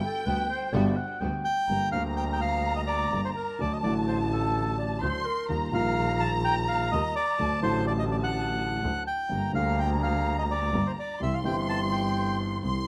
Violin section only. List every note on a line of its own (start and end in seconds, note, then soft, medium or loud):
0.00 1.21 G5 medium
1.68 3.55 A#5 medium
3.59 5.02 A5 medium
5.02 5.50 C6 medium
5.50 7.36 A#5 loud
7.39 7.87 A5 medium
7.88 9.03 A5 medium
9.30 11.17 A#5 medium
11.20 12.59 C6 medium
12.64 12.87 C6 medium